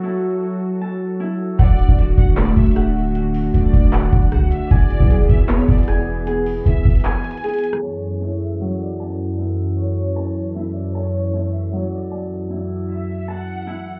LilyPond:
<<
  \new Staff \with { instrumentName = "Violin section" } { \time 4/4 \key fis \minor \tempo 4 = 154 r1 | d''4. fis''8 d''8 e''8 r4 | r4 d''2 fis''8 e''8 | d''4. e''8 cis''8 d''8 r4 |
r4 e''4 gis''2 | cis''4. e''8 cis''8 d''8 r4 | r4 cis''2 e''8 d''8 | cis''4. e''8 cis''8 d''8 r4 |
r4 e''4 fis''2 | }
  \new Staff \with { instrumentName = "Harp" } { \time 4/4 \key fis \minor <fis e' a''>2 a''4 e'4 | fis''4 fis'4 a4 fis''4 | fis'2 fis''4 fis'4 | gis''4 gis'4 b4 gis''4 |
gis'2 gis''4 gis'4 | a''4 e'4 fis4 a''4 | e'2 a''4 e'4 | a''4 e'4 fis4 a''4 |
e'2 a''4 e'4 | }
  \new Staff \with { instrumentName = "Analog synth pad" } { \time 4/4 \key fis \minor <fis fis' a'>1 | <d a fis'>1~ | <d a fis'>1 | <e b gis'>1~ |
<e b gis'>1 | <fis, e a'>1~ | <fis, e a'>1~ | <fis, e a'>1~ |
<fis, e a'>1 | }
  \new Staff \with { instrumentName = "808-style bass" } { \clef bass \time 4/4 \key fis \minor r1 | d,,8. d,,8. d,,4 d,,4.~ | d,,4 d,,8 d,,4 d,,8 d,16 d,,16 r8 | e,,8 fis,,16 b,,8 d,,16 e,,4 e,,4.~ |
e,,4 e,,8 e,,8 r2 | r1 | r1 | r1 |
r1 | }
  \new DrumStaff \with { instrumentName = "Drums" } \drummode { \time 4/4 r4 r4 r4 r4 | <hh bd>8 hh16 bd16 hh8 <hh bd>8 <hc hh>8 <hh bd>32 hh32 hh32 hh32 <hh ss>4 | hh8 hho8 hh8 <hh bd>8 <hc hh>8 <hh bd>16 hh16 <hh ss>8 hh8 | <hh bd>8 hh16 bd16 hh8 <hh bd>8 <hc hh>8 <hh bd>32 hh32 hh32 hh32 <hh ss>4 |
hh8 hho8 hh8 <hh bd>32 hh32 hh32 hh32 \tuplet 3/2 { <hc hh>16 r16 r16 hh16 hh16 hh16 } hh32 hh32 hh32 hh32 hh16 ss16 | r4 r4 r4 r4 | r4 r4 r4 r4 | r4 r4 r4 r4 |
r4 r4 r4 r4 | }
>>